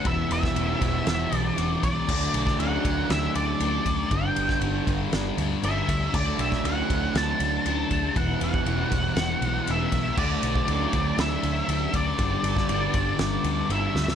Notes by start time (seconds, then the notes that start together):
0.03 E1 E2 B2 E3 G3 B3 E5, kick, ride
0.08 E4
0.30 E1 E5, ride
0.43 kick, snare
0.54 E1 E2 B2 E3, ride
0.82 E1, kick, ride
1.05 E1 E2 B2 E3, snare, ride
1.32 B1 B2 E3, ride
1.37 D5
1.56 E1 E2 B2 E3, ride
1.83 B1 D5, kick, ride
2.07 D2 D3 F#3 A3 D4, kick, crash
2.34 B1, ride
2.47 kick, snare
2.58 D2 D3 A3 D4 F#5, ride
2.85 D2, kick, ride
3.09 D2 D3 A3 D4 E5, snare, ride
3.34 D2 A3 D4 D5, ride
3.60 D2 D3 A3 D4, ride
3.86 D2, kick, ride
4.10 G1 G2 D3 G3 B3 D4 G5, kick, ride
4.36 G1, ride
4.49 kick, snare
4.61 G1 G2 D3 G3, ride
4.87 G1, kick, ride
5.12 G1 G2 D3 G3, snare, ride
5.37 D2 D3 G3, ride
5.63 G1 G2 D3 G3 E5, ride
5.89 D2, kick, ride
6.12 D2 D3 F#3 A3 D4 D5, kick, crash
6.38 B1 E5, ride
6.52 kick, snare
6.63 D2 D3 A3 D4 F#5, ride
6.90 D2, kick, ride
7.14 D2 D3 A3 D4 A5, snare, ride
7.40 D2 A3 D4, ride
7.65 D2 D3 A3 D4, ride
7.91 D2, kick, ride
8.15 E1 E2 B2 E3 G3 B3 E4 F#5, kick, ride
8.41 E1 F#5, ride
8.54 kick
8.66 E1 E2 B2 E3, ride
8.92 E1, kick, ride
9.16 E1 E2 B2 E3, snare, ride
9.41 B1 B2 E3, ride
9.67 E1 E2 B2 E3, ride
9.71 E5
9.92 B1, kick, ride
10.17 D2 D3 F#3 A3 D4 D5, kick, crash
10.42 B1, ride
10.55 kick
10.68 D2 D3 A3 D4, ride
10.93 D2, kick, ride
11.17 D2 D3 A3 D4 E5, snare, ride
11.42 D2 A3 D4, ride
11.67 D2 D3 A3 D4, ride
11.94 D2 D5, kick, ride
12.18 G1 G2 D3 G3 B3 D4, kick, ride
12.43 G1, ride
12.57 kick, snare
12.69 G1 G2 D3 G3, ride
12.94 G1, kick, ride
13.18 G1 G2 D3 G3, snare, ride
13.44 D2 D3 G3, ride
13.69 G1 G2 D3 G3 E5, ride
13.94 D2, snare
14.08 snare